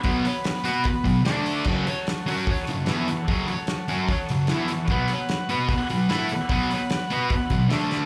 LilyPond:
<<
  \new Staff \with { instrumentName = "Transistor combo organ" } { \time 4/4 \key b \dorian \tempo 4 = 149 <b fis' b'>2. <d' a' d''>4 | <fis' a' cis''>1~ | <fis' a' cis''>1 | <fis' b' fis''>1~ |
<fis' b' fis''>2. <a' d'' a''>4 | }
  \new Staff \with { instrumentName = "Distorted electric guitar" } { \clef bass \time 4/4 \key b \dorian <b, fis b>8 r4 <b fis' b'>8 r8 <b, fis>8 <d a d'>4 | <fis, cis fis>8 r4 <fis cis' fis'>8 r8 <fis, cis>8 <e b e'>8 r8 | <fis, cis fis>8 r4 <fis cis' fis'>8 r8 <fis, cis>8 <e b e'>8 r8 | <b, fis b>8 r4 <b fis' b'>8 r8 <b, fis>8 <a e' a'>8 r8 |
<b, fis b>8 r4 <b fis' b'>8 r8 <b, fis>8 <d a d'>4 | }
  \new DrumStaff \with { instrumentName = "Drums" } \drummode { \time 4/4 <hho bd>8 hho8 <hho sn>8 hho8 <hho bd>8 <hho bd>8 <hho sn>8 hho8 | <cymc bd>8 hho8 <hho sn>8 hho8 <hho bd>8 hho8 <hho sn>8 hho8 | <hho bd>8 hho8 <hho sn>8 hho8 <hho bd>8 hho8 <hho sn>8 hho8 | <hho bd>8 hho8 <hho sn>8 hho8 <hho bd>8 hho8 <hho sn>8 hho8 |
<hho bd>8 hho8 <hho sn>8 hho8 <hho bd>8 <hho bd>8 <hho sn>8 sn8 | }
>>